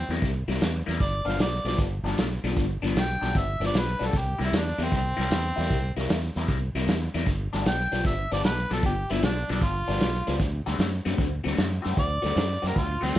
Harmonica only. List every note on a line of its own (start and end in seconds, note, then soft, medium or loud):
0.00 0.20 C4 medium
1.01 1.31 D5 loud
1.29 1.40 F5 medium
1.41 1.66 D5 medium
1.68 1.79 D5 medium
3.00 3.39 G5 medium
3.38 3.62 E5 medium
3.66 3.80 D5 medium
3.78 4.07 B4 medium
4.06 4.19 A4 medium
4.18 4.41 G4 medium
4.44 4.58 E4 medium
4.57 4.85 D4 medium
4.83 4.93 C4 medium
4.97 6.08 C4 loud
7.68 8.05 G5 medium
8.06 8.31 E5 medium
8.33 8.44 D5 medium
8.45 8.70 B4 medium
8.73 8.84 A4 medium
8.86 9.12 G4 medium
9.11 9.23 E4 medium
9.24 9.49 D4 medium
9.52 9.66 D4 medium
9.64 10.39 F4 loud
12.00 12.62 D5 loud
12.67 12.80 A#4 medium
12.79 13.05 F4 medium
13.04 13.19 C4 loud